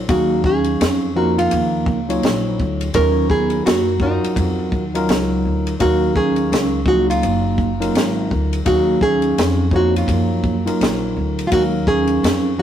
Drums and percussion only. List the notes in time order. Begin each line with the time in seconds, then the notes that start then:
0.09 kick, ride
0.44 kick
0.64 ride
0.81 snare, hi-hat pedal, ride
1.39 ride
1.51 ride
1.86 kick
2.10 ride
2.23 snare, hi-hat pedal, ride
2.60 kick
2.81 ride
2.94 kick, ride
3.30 kick
3.50 ride
3.67 snare, hi-hat pedal, ride
4.00 kick
4.24 ride
4.36 kick, ride
4.72 kick
4.95 ride
5.09 snare, hi-hat pedal, ride
5.67 ride
5.80 kick, ride
6.16 kick
6.36 ride
6.53 snare, hi-hat pedal, ride
6.86 kick
7.11 ride
7.23 ride
7.58 kick
7.82 ride
7.95 snare, hi-hat pedal, ride
8.31 kick
8.53 ride
8.66 kick, ride
9.01 kick
9.22 ride
9.38 snare, hi-hat pedal, ride
9.71 kick
9.96 ride
10.08 kick, ride
10.44 kick
10.67 ride
10.81 snare, hi-hat pedal, ride
11.39 ride
11.52 kick, ride
11.87 kick
12.07 ride
12.24 snare, hi-hat pedal, ride